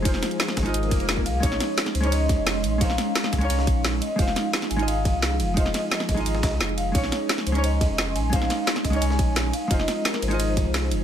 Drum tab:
RD |x-x-x-x-xxx-x-x-|x-x-x-xxx-x-x-x-|x-x-x-x-x-x-x-x-|x-x-x-xxx-x-x-x-|
HH |x-xxxxxxx-xxx-x-|x-x-xxxxx-x-x-x-|x-x-xxxxx-x-x-x-|x-x-xxxxx-x-x-x-|
SD |-oo-ooo-----o---|-oo-oo----o-o---|-oo-ooo--o--o---|-oo-oo----o-o---|
BD |o-----o---o--o--|o---------o-----|o-----o---o-----|o---------o-----|

RD |x-x-x-x-x-x--xx-|x-x-x-xxx-x-x-x-|x-x-x-x-x-x-x-x-|x-x-x-xxx-x-x-x-|
HH |x-x-xxxxx-x-x-x-|x-x-xxxxx-x-x-x-|x-x-xxxxx-x-x-x-|x-x-xxxxx-x-x-x-|
SD |-oo-ooo--oo-o---|-oo-oo----o-o---|-oo-ooo--o--o---|-oo-oo----o-o---|
BD |o-----o---o-----|o---------o-----|o-----o---o-----|o---------o-----|